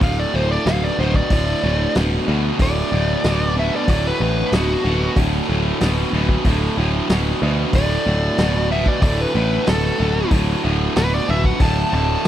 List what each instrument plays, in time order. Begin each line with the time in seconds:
0.01 picked electric bass D1, distorted electric guitar D2 A2, lead electric guitar F5, kick, open hi-hat
0.19 lead electric guitar D5
0.33 picked electric bass D1, distorted electric guitar D2 A2, lead electric guitar C5
0.52 lead electric guitar D5
0.66 picked electric bass D1, distorted electric guitar D2 B2, lead electric guitar F5, snare, open hi-hat
0.84 lead electric guitar D5
0.99 picked electric bass D1, distorted electric guitar D2 B2, lead electric guitar C5
1.14 lead electric guitar D5, kick
1.30 picked electric bass D1, distorted electric guitar D2 A2, lead electric guitar D5, kick, open hi-hat
1.62 picked electric bass D1, distorted electric guitar D2 A2
1.95 picked electric bass D1, distorted electric guitar D2 B2, snare, open hi-hat
2.28 distorted electric guitar D2 B2, picked electric bass D2
2.59 picked electric bass D1, distorted electric guitar D2 A2, lead electric guitar D5, kick, open hi-hat
2.92 picked electric bass D1, distorted electric guitar D2 A2
3.24 picked electric bass D1, distorted electric guitar D2 B2, snare, open hi-hat
3.57 distorted electric guitar D2 B2, lead electric guitar E5
3.76 lead electric guitar D5
3.88 picked electric bass D1, distorted electric guitar D2 A2, lead electric guitar D5, kick, open hi-hat
4.07 lead electric guitar B4
4.20 picked electric bass A1, distorted electric guitar D2 A2
4.52 picked electric bass D1, distorted electric guitar D2 B2, snare, open hi-hat
4.56 lead electric guitar F#4
4.84 picked electric bass D1, distorted electric guitar D2 B2
5.16 picked electric bass D1, distorted electric guitar D2 A2, kick, open hi-hat
5.48 picked electric bass D1, distorted electric guitar D2 A2
5.80 picked electric bass D1, distorted electric guitar D2 B2, snare, open hi-hat
6.13 picked electric bass D1, distorted electric guitar D2 B2
6.29 kick
6.45 picked electric bass D1, distorted electric guitar D2 A2, kick, open hi-hat
6.77 picked electric bass D1, distorted electric guitar D2 A2
7.09 picked electric bass D1, distorted electric guitar D2 B2, snare, open hi-hat
7.42 distorted electric guitar D2 B2, picked electric bass D2
7.73 picked electric bass D1, distorted electric guitar D2 A2, lead electric guitar D5, kick, open hi-hat
8.06 picked electric bass D1, distorted electric guitar D2 A2
8.38 picked electric bass D1, distorted electric guitar D2 B2, snare, open hi-hat
8.70 distorted electric guitar D2 B2, lead electric guitar E5
8.86 lead electric guitar D5, kick
9.01 picked electric bass D1, distorted electric guitar D2 A2, lead electric guitar D5, kick, open hi-hat
9.21 lead electric guitar B4
9.34 picked electric bass A1, distorted electric guitar D2 A2
9.66 picked electric bass D1, distorted electric guitar D2 B2, lead electric guitar A4, snare, open hi-hat
9.98 picked electric bass D1, distorted electric guitar D2 B2
10.31 picked electric bass D1, distorted electric guitar D2 A2, kick, open hi-hat
10.63 picked electric bass D1, distorted electric guitar D2 A2
10.96 picked electric bass D1, distorted electric guitar D2 B2, lead electric guitar B4, snare, open hi-hat
11.14 lead electric guitar D5
11.28 picked electric bass D1, distorted electric guitar D2 B2, lead electric guitar E5
11.44 lead electric guitar F#5, kick
11.60 picked electric bass D1, distorted electric guitar D2 A2, lead electric guitar A5, kick, open hi-hat
11.92 picked electric bass D1, distorted electric guitar D2 A2, lead electric guitar A5
12.24 open hi-hat